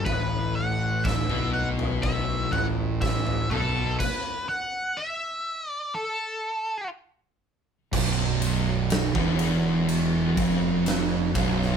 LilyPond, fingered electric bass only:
\new Staff \with { instrumentName = "Fingered electric bass" } { \clef bass \time 4/4 \key a \mixolydian \tempo 4 = 61 a,,4~ a,,16 b,,4~ b,,16 a,,4 b,,8 | r1 | b,,,4~ b,,,16 e,,4~ e,,16 eis,,4 b,,,8 | }